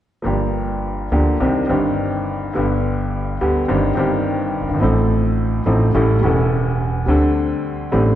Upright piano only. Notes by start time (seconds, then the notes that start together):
0.22 G1 G2 F3 A#3 D4 G4
1.12 D2 D3 F3 A#3 D4 G4
1.40 C2 C3 D#3 C4 D4 G4
1.67 G1 G2 D#3 C4 D4 G4
2.53 G1 G2 D3 G3 B3
2.58 G4
3.41 D2 D3 G3 B3 G4
3.68 G1 G2 D#3 C4 D4 G4
3.95 G1 G2 D#3 C4 D4
3.99 G4
4.61 F#1
4.68 G1
4.74 G#1
4.80 A1 A2 F3 C4 D#4 A4
5.66 A1 A2 F3 C4 D#4 A4
5.94 A1 A2 G3 C#4 E4 A4
6.21 E1 E2 G3 C#4 E4
6.26 A4
7.06 D2 D3 G3 C4 D4 A4
7.91 A1 A2 G3 C4 D4 A4